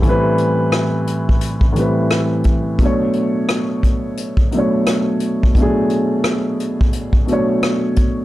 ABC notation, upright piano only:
X:1
M:4/4
L:1/8
Q:"Swing 16ths" 1/4=87
K:Bdor
V:1 name="Upright piano"
[A,,E,=G,=CB]3 z2 [A,,E,G,CB]2 z | [B,,F,A,Dc]3 z2 [B,,F,A,Dc]2 z | [B,,F,A,DG]3 z2 [B,,F,A,Dc]2 z |]